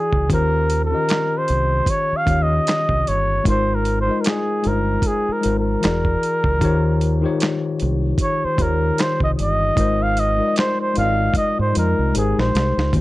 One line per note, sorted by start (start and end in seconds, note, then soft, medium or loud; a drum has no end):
0.00 0.26 E3 medium
0.00 0.26 E4 medium
0.00 0.27 F#4 medium
0.00 0.27 G#4 medium
0.00 0.29 G#4 medium
0.00 0.28 D5 medium
0.13 0.27 C#2 medium
0.13 kick medium
0.28 0.93 D#2 medium
0.28 0.87 D#3 medium
0.28 0.88 C#4 medium
0.28 0.89 F4 medium
0.28 0.89 G4 medium
0.28 kick loud
0.28 closed hi-hat medium
0.33 0.81 A#4 loud
0.33 0.90 C5 loud
0.70 closed hi-hat medium
0.85 1.39 A#4 loud
0.90 2.20 D#3 medium
0.90 2.21 C#4 medium
0.90 2.22 F4 medium
0.90 2.22 G4 medium
0.95 2.23 D#5 medium
1.09 snare loud
1.09 clap medium
1.09 closed hi-hat medium
1.38 1.92 C5 medium
1.48 1.80 C2 medium
1.48 closed hi-hat medium
1.86 2.18 C#5 loud
1.86 kick medium
1.86 closed hi-hat medium
2.13 muted fingered electric bass stroke soft
2.17 2.44 F5 medium
2.25 2.59 D#2 medium
2.25 3.40 D#3 medium
2.25 3.40 C#4 medium
2.25 3.41 F4 medium
2.25 3.41 G4 medium
2.25 kick medium
2.25 closed hi-hat medium
2.30 3.42 C#5 medium
2.43 3.10 D#5 loud
2.67 snare loud
2.67 clap medium
2.67 closed hi-hat medium
2.89 3.03 C2 medium
2.89 kick medium
3.07 3.38 G1 medium
3.07 3.47 C#5 medium
3.07 closed hi-hat medium
3.44 4.08 G#1 medium
3.44 4.03 G#3 loud
3.44 4.04 D#4 medium
3.44 4.05 F4 medium
3.44 4.05 A#4 medium
3.44 kick loud
3.44 closed hi-hat medium
3.48 3.76 C5 loud
3.48 4.06 C5 loud
3.75 4.00 A#4 medium
3.85 closed hi-hat medium
4.01 4.22 C5 medium
4.06 4.61 G#3 medium
4.06 4.61 D#4 medium
4.06 4.62 F4 medium
4.06 4.63 A#4 medium
4.11 4.63 D#5 medium
4.21 4.29 A#4 medium
4.21 closed hi-hat medium
4.27 4.69 G#4 medium
4.27 snare loud
4.27 clap medium
4.62 4.96 G1 medium
4.62 5.39 G#3 medium
4.62 5.39 D#4 medium
4.62 5.40 F4 medium
4.62 5.41 A#4 medium
4.62 closed hi-hat medium
4.67 5.09 A#4 medium
4.67 5.41 C5 medium
5.02 kick medium
5.02 closed hi-hat medium
5.07 5.34 G#4 medium
5.29 5.57 A#4 medium
5.29 muted fingered electric bass stroke soft
5.41 5.82 G#3 medium
5.41 5.82 D#4 medium
5.41 5.83 F4 medium
5.41 5.83 A#4 medium
5.41 closed hi-hat medium
5.45 5.75 G#1 medium
5.45 5.84 C5 medium
5.59 7.51 A#4 medium
5.81 6.57 E3 medium
5.81 6.58 E4 medium
5.81 6.58 F#4 medium
5.81 6.59 G#4 medium
5.81 closed hi-hat medium
5.85 6.15 E1 loud
5.85 6.60 D5 medium
5.85 snare loud
5.85 clap medium
6.05 kick medium
6.23 closed hi-hat medium
6.44 6.58 C#2 medium
6.44 kick medium
6.60 7.24 D#2 loud
6.60 7.19 D#3 loud
6.60 7.20 D#4 medium
6.60 7.20 F4 loud
6.60 7.21 G4 loud
6.60 7.21 C5 medium
6.60 kick loud
6.60 closed hi-hat medium
6.65 7.21 C#5 loud
7.01 closed hi-hat medium
7.21 8.52 D#3 medium
7.21 8.52 D#4 medium
7.21 8.53 F4 medium
7.21 8.53 G4 medium
7.21 8.54 C5 medium
7.26 8.54 C#5 loud
7.40 snare loud
7.40 clap medium
7.40 closed hi-hat medium
7.80 8.12 C2 medium
7.80 closed hi-hat medium
8.18 kick medium
8.18 closed hi-hat medium
8.22 8.46 C#5 medium
8.45 8.63 C5 medium
8.45 muted fingered electric bass stroke soft
8.57 8.90 D#2 medium
8.57 9.71 D#3 medium
8.57 9.72 D#4 medium
8.57 9.72 F4 medium
8.57 9.73 G4 medium
8.57 9.73 C5 medium
8.57 kick medium
8.57 closed hi-hat medium
8.62 9.03 A#4 medium
8.62 9.74 C#5 medium
8.98 9.22 C5 medium
8.98 snare loud
8.98 clap medium
8.98 closed hi-hat medium
9.20 9.35 C2 medium
9.20 9.31 D#5 medium
9.20 kick medium
9.39 9.70 G1 medium
9.39 10.04 D#5 loud
9.39 closed hi-hat medium
9.76 10.40 G#1 medium
9.76 10.35 G#3 medium
9.76 10.36 D#4 medium
9.76 10.36 F4 medium
9.76 10.37 A#4 medium
9.76 kick loud
9.76 closed hi-hat medium
9.80 10.37 C5 loud
10.03 10.21 F5 loud
10.17 10.58 D#5 loud
10.17 closed hi-hat medium
10.37 10.92 G#3 medium
10.37 10.93 D#4 medium
10.37 10.93 F4 medium
10.37 10.94 A#4 medium
10.42 10.46 D5 medium
10.48 10.98 D#5 medium
10.56 10.78 C5 loud
10.56 snare loud
10.56 clap medium
10.56 closed hi-hat medium
10.81 10.96 C5 medium
10.94 11.28 G#1 loud
10.94 11.70 G#3 medium
10.94 11.71 D#4 medium
10.94 11.72 F4 medium
10.94 11.72 A#4 medium
10.94 closed hi-hat medium
10.98 11.04 D5 medium
10.98 11.34 F5 loud
11.05 11.76 D#5 medium
11.34 11.57 D#5 loud
11.34 kick medium
11.34 closed hi-hat medium
11.59 11.72 G#2 medium
11.59 11.75 C5 medium
11.73 11.93 F2 medium
11.73 12.11 G#3 medium
11.73 12.13 D#4 medium
11.73 12.14 F4 medium
11.73 12.15 A#4 medium
11.73 closed hi-hat medium
11.78 12.13 A#4 medium
11.78 12.16 D#5 medium
11.99 12.12 C2 medium
12.13 12.33 G#1 loud
12.13 12.89 G#3 medium
12.13 12.90 D#4 medium
12.13 12.90 G4 medium
12.13 12.91 A#4 medium
12.13 closed hi-hat medium
12.17 12.41 G#4 medium
12.17 12.91 C5 medium
12.38 12.51 A#1 medium
12.38 12.95 C5 medium
12.38 snare medium
12.55 12.72 C2 medium
12.55 snare medium
12.55 closed hi-hat medium
12.78 12.90 C#2 medium
12.78 snare medium
12.92 13.01 D#2 medium
12.92 13.01 D#3 medium
12.92 13.01 A#3 medium
12.92 13.01 C#4 medium
12.92 13.01 F4 medium
12.92 13.01 F#4 medium
12.92 kick medium
12.92 closed hi-hat medium
12.97 13.01 C5 medium